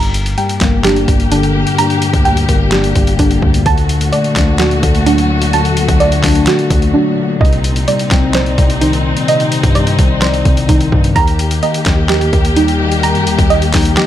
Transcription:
Already playing: 808-style bass G1, tine electric piano G2, string section A#2 A#3 G4, synth pluck A#5
0.03 closed hi-hat
0.14 closed hi-hat
0.26 closed hi-hat
0.38 tine electric piano G3, synth pluck G5, closed hi-hat
0.49 closed hi-hat
0.61 808-style bass G1, tine electric piano A#3, kick, snare, clap, closed hi-hat
0.84 tine electric piano D4, synth pluck G4, snare, clap, closed hi-hat
0.96 closed hi-hat
1.08 808-style bass G1, tine electric piano G2, kick, closed hi-hat
1.20 closed hi-hat
1.32 tine electric piano D3, synth pluck D4, closed hi-hat
1.43 closed hi-hat
1.67 closed hi-hat
1.78 tine electric piano G2, synth pluck A#5, closed hi-hat
1.90 closed hi-hat
2.02 closed hi-hat
2.13 808-style bass D2, kick, closed hi-hat
2.25 tine electric piano G3, synth pluck G5, closed hi-hat
2.37 closed hi-hat
2.49 808-style bass G1, tine electric piano A#3, kick, closed hi-hat
2.72 tine electric piano D4, synth pluck G4, snare, clap, closed hi-hat
2.84 closed hi-hat
2.95 808-style bass G1, tine electric piano G2, kick, closed hi-hat
3.07 closed hi-hat
3.19 808-style bass G1, tine electric piano D3, synth pluck D4, kick, closed hi-hat
3.31 closed hi-hat
3.42 808-style bass D2, kick
3.54 closed hi-hat
3.66 808-style bass D2, tine electric piano D3, string section A3 F#4, synth pluck A5, kick, closed hi-hat
3.78 closed hi-hat
3.89 closed hi-hat
4.01 closed hi-hat
4.12 tine electric piano A3, synth pluck D5, closed hi-hat
4.24 closed hi-hat
4.36 808-style bass D2, tine electric piano D4, kick, snare, clap, closed hi-hat
4.59 synth pluck F#4, tine electric piano D5, snare, clap, closed hi-hat
4.71 closed hi-hat
4.83 808-style bass D2, tine electric piano D3, kick, closed hi-hat
4.95 closed hi-hat
5.06 tine electric piano F#3, synth pluck D4, closed hi-hat
5.18 closed hi-hat
5.42 closed hi-hat
5.53 tine electric piano D3, synth pluck A5, closed hi-hat
5.65 808-style bass D#2, closed hi-hat
5.77 808-style bass D2, closed hi-hat
5.88 808-style bass D2, kick, closed hi-hat
6.00 tine electric piano A3, synth pluck D5, closed hi-hat
6.12 closed hi-hat
6.23 808-style bass D2, tine electric piano D4, kick, snare, clap, closed hi-hat, open hi-hat
6.35 closed hi-hat
6.47 synth pluck F#4, tine electric piano D5, snare, clap, closed hi-hat
6.59 closed hi-hat
6.70 808-style bass D2, tine electric piano D3, kick, closed hi-hat
6.82 closed hi-hat
6.94 tine electric piano F#3, synth pluck D4
7.41 808-style bass C2, tine electric piano C3, string section C4 D#4, synth pluck D#5, kick
7.45 closed hi-hat
7.53 closed hi-hat
7.64 closed hi-hat
7.76 closed hi-hat
7.88 tine electric piano G3, synth pluck D5, closed hi-hat
7.99 closed hi-hat
8.11 808-style bass C2, tine electric piano C4, kick, snare, clap, closed hi-hat
8.34 synth pluck C5, tine electric piano D5, snare, clap, closed hi-hat
8.46 closed hi-hat
8.58 808-style bass C2, tine electric piano C3, kick, closed hi-hat
8.70 closed hi-hat
8.81 tine electric piano D#3, synth pluck D#4, closed hi-hat
8.93 closed hi-hat
9.17 closed hi-hat
9.28 tine electric piano C3, synth pluck D#5, closed hi-hat
9.40 closed hi-hat
9.52 closed hi-hat
9.63 808-style bass G2, kick, closed hi-hat
9.75 tine electric piano G3, synth pluck D5, closed hi-hat
9.87 closed hi-hat
9.99 808-style bass C2, tine electric piano C4, kick, closed hi-hat
10.22 synth pluck C5, tine electric piano D5, snare, clap, closed hi-hat
10.34 closed hi-hat
10.45 808-style bass C2, tine electric piano C3, kick, closed hi-hat
10.57 closed hi-hat
10.69 808-style bass C2, tine electric piano D#3, synth pluck D#4, kick, closed hi-hat
10.81 closed hi-hat
10.92 808-style bass G2, kick
11.04 closed hi-hat
11.16 808-style bass D#2, string section D#3 A#3 G4, tine electric piano D#3, synth pluck A#5, kick, closed hi-hat
11.27 closed hi-hat
11.39 closed hi-hat
11.51 closed hi-hat
11.62 tine electric piano A#3, synth pluck D#5, closed hi-hat
11.74 closed hi-hat
11.86 808-style bass D#2, tine electric piano D#4, kick, snare, clap, closed hi-hat
12.09 synth pluck G4, tine electric piano D#5, snare, clap, closed hi-hat
12.21 closed hi-hat
12.33 808-style bass D#2, tine electric piano D#3, kick, closed hi-hat
12.45 closed hi-hat
12.56 tine electric piano G3, synth pluck D#4, closed hi-hat
12.68 closed hi-hat
12.92 closed hi-hat
13.03 tine electric piano D#3, synth pluck A#5, closed hi-hat
13.15 808-style bass F#2, closed hi-hat
13.27 808-style bass D#2, closed hi-hat
13.38 808-style bass D#2, kick, closed hi-hat
13.50 tine electric piano A#3, synth pluck D#5, closed hi-hat
13.62 closed hi-hat
13.73 808-style bass D#2, tine electric piano D#4, kick, snare, clap, closed hi-hat, open hi-hat
13.85 closed hi-hat
13.97 synth pluck G4, tine electric piano D#5, snare, clap, closed hi-hat

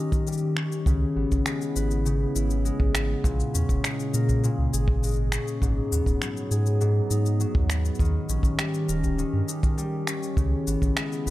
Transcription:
Already playing: ambient pad D#3 C#4 G4, harp D#3 C#4 D#4 A#4
0.12 kick, shaker
0.27 harp G3, shaker
0.32 shaker
0.37 shaker
0.57 harp C#4, finger snap
0.72 shaker
0.86 sub bass C#2, harp C#3, ambient pad C#3 B3 E4, kick, shaker
1.16 sub bass G#1, harp B3
1.32 sub bass G#1, kick, shaker
1.46 harp G#3, finger snap, shaker
1.61 shaker
1.76 sub bass G#1, harp B4, shaker
1.91 shaker
2.05 harp C#3, shaker
2.35 sub bass G#1, harp E4, shaker
2.50 shaker
2.65 harp G#3, shaker
2.80 sub bass G#1, kick
2.94 harp B3, finger snap, shaker
3.24 sub bass A#1, harp A#2, ambient pad C#3 A#3 G#4, kick, shaker
3.40 shaker
3.54 sub bass E2, harp C#4, shaker
3.69 sub bass E1, kick, shaker
3.84 harp G#3, finger snap, shaker
4.00 shaker
4.14 sub bass A#2, harp A#4, shaker
4.29 kick, shaker
4.44 harp A#2, shaker
4.58 sub bass C#2
4.73 sub bass G#1, harp G#4, shaker
4.88 kick
5.03 harp G#3, shaker
5.06 shaker
5.08 shaker
5.11 shaker
5.13 shaker
5.16 shaker
5.32 harp C#4, finger snap, shaker
5.48 shaker
5.62 sub bass G#1, harp G#2, ambient pad F#3 B3, kick, shaker
5.92 sub bass D#2, harp B3, shaker
6.06 sub bass D#1, kick, shaker
6.22 harp F#3, finger snap, shaker
6.37 shaker
6.51 sub bass G#2, harp G#4, shaker
6.66 shaker
6.81 harp G#2, shaker
7.10 sub bass G#2, harp D#4, shaker
7.26 shaker
7.40 harp F#3, shaker
7.55 sub bass D#2, kick
7.70 harp B3, finger snap, shaker
7.85 shaker
7.95 shaker
7.99 sub bass D#2, ambient pad D#3 C#4 G4, harp D#3, kick, shaker
8.05 shaker
8.29 sub bass A#1, harp C#4, shaker
8.43 sub bass A#1, kick, shaker
8.59 harp G3, finger snap, shaker
8.74 shaker
8.89 sub bass D#1, harp A#4, shaker
9.04 kick, shaker
9.18 harp D#3, shaker
9.33 sub bass G2
9.48 harp D#4, shaker
9.63 kick, shaker
9.78 harp G3, shaker
10.07 harp C#4, finger snap, shaker
10.23 shaker
10.37 sub bass C#2, harp C#3, ambient pad C#3 B3 E4, kick, shaker
10.67 sub bass G#1, harp B3, shaker
10.82 sub bass G#1, kick, shaker
10.97 harp G#3, finger snap, shaker
11.12 shaker
11.26 sub bass G#1, harp B4, shaker

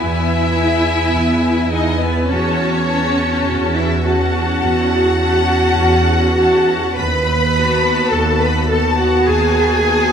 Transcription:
Already playing: viola section B3 E4, violin section G#5
0.00 double bass section E2, cello section E4, violin section E5
0.56 viola section B3 E4, violin section G#5
1.14 double bass section E2
1.72 viola section B3 E4, cello section D#4, violin section D#5 G#5
2.00 cello section B3, violin section B4
2.30 double bass section E2, cello section C#4, viola section C#4 F#4, violin section C#5 A5
2.89 viola section C#4 F#4, violin section A5
3.49 double bass section E2
3.76 cello section E4, violin section E5
4.04 viola section C#4 F#4, cello section F#4, violin section F#5 A5
4.62 double bass section E2
5.19 viola section C#4 F#4, violin section A5
5.75 double bass section E2
6.37 viola section C#4 F#4, violin section A5
6.96 double bass section D#2, cello section B4, violin section B5
7.55 viola section B3 F#4, violin section A5
8.11 double bass section D#2, cello section A4, violin section A5
8.41 cello section B4, violin section B5
8.70 viola section B3 F#4, cello section A4, violin section A5
8.98 cello section F#4, violin section F#5
9.27 double bass section D#2, cello section G#4, violin section G#5
9.86 viola section B3 F#4, violin section A5

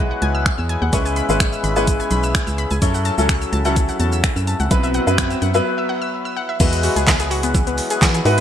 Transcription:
Already playing: fm bass B1, accordion E3 F#3 G#3 B3 F#4, grand piano G#3 E4 F#4 B4
0.11 synth pluck F#5
0.22 fm bass C#2, synth pluck G#5, closed hi-hat
0.35 synth pluck E6
0.46 finger snap, kick, closed hi-hat
0.58 fm bass E2, synth pluck E6
0.69 synth pluck G#5, closed hi-hat
0.82 fm bass D#2, synth pluck F#5
0.93 fm bass C#2, accordion C#3 E4, grand piano G#3 C#4 E4 B4, synth pluck C#5, kick, closed hi-hat, shaker
1.06 synth pluck G#5, shaker
1.16 synth pluck B5, closed hi-hat, shaker
1.29 fm bass G#1, grand piano G#3 C#4 E4 B4, shaker
1.40 synth pluck C#7, finger snap, kick, closed hi-hat, shaker
1.53 synth pluck E6, shaker
1.64 fm bass G#1, synth pluck B5, closed hi-hat, shaker
1.76 grand piano G#3 C#4 E4 B4, synth pluck G#5, shaker
1.87 kick, closed hi-hat, shaker
2.00 synth pluck G#5, shaker
2.11 fm bass B1, synth pluck B5, closed hi-hat, shaker
2.23 synth pluck E6, shaker
2.35 finger snap, kick, closed hi-hat, shaker
2.47 fm bass C#2, synth pluck E6, shaker
2.58 synth pluck B5, closed hi-hat, shaker
2.71 fm bass C#2, synth pluck G#5, shaker
2.82 fm bass F#2, grand piano F#3 C#4 E4 A4, accordion F#3 A3, synth pluck C#5, kick, closed hi-hat, swell, shaker
2.94 synth pluck F#5, shaker
3.05 synth pluck A5, closed hi-hat, shaker
3.18 fm bass C#2, grand piano F#3 C#4 E4 A4, shaker
3.29 synth pluck C#7, finger snap, kick, closed hi-hat, shaker
3.42 synth pluck E6, shaker
3.53 fm bass C#2, synth pluck A5, closed hi-hat, shaker
3.65 grand piano F#3 C#4 E4 A4, synth pluck F#5, shaker
3.76 kick, closed hi-hat, shaker
3.89 synth pluck F#5, shaker
4.00 fm bass E2, synth pluck A5, closed hi-hat, shaker
4.12 synth pluck E6, shaker
4.24 finger snap, kick, closed hi-hat, shaker
4.36 fm bass F#2, synth pluck E6, shaker
4.47 synth pluck A5, closed hi-hat, shaker
4.60 fm bass C#2, synth pluck F#5, shaker
4.71 fm bass B1, grand piano F#3 B3 E4 B4, accordion F#3 B3, synth pluck B4, kick, closed hi-hat, shaker
4.83 synth pluck E5, shaker
4.94 synth pluck F#5, closed hi-hat, shaker
5.07 fm bass F#2, grand piano F#3 B3 E4 B4, shaker
5.18 synth pluck B6, finger snap, kick, closed hi-hat, shaker
5.31 synth pluck E6, shaker
5.42 fm bass F#2, synth pluck F#5, closed hi-hat, shaker
5.54 grand piano F#3 B3 E4 B4, synth pluck E5, shaker
5.78 synth pluck E5
5.89 synth pluck F#5
6.02 synth pluck E6
6.25 synth pluck E6
6.37 synth pluck F#5
6.49 synth pluck E5
6.60 fm bass E2, accordion E3 F#3 G#3 B3 F#4, synth pluck E3, grand piano G#3 E4 F#4 B4, kick, crash, shaker
6.73 closed hi-hat, shaker
6.83 synth pluck F#4, open hi-hat, shaker
6.96 fm bass C#2, synth pluck G#4, closed hi-hat, shaker
7.07 synth pluck E5, kick, snare, clap, shaker
7.20 synth pluck G#4, closed hi-hat, shaker
7.31 synth pluck F#4, open hi-hat, shaker
7.43 synth pluck B3, closed hi-hat, shaker
7.54 synth pluck E3, kick, shaker
7.67 synth pluck B3, closed hi-hat, shaker
7.78 clap, open hi-hat, shaker
7.90 synth pluck G#4, closed hi-hat, shaker
8.02 fm bass E3, kick, snare, clap, shaker
8.14 synth pluck G#4, closed hi-hat, shaker
8.25 fm bass G#2, grand piano G#3 E4 F#4 B4, synth pluck F#4, open hi-hat, shaker

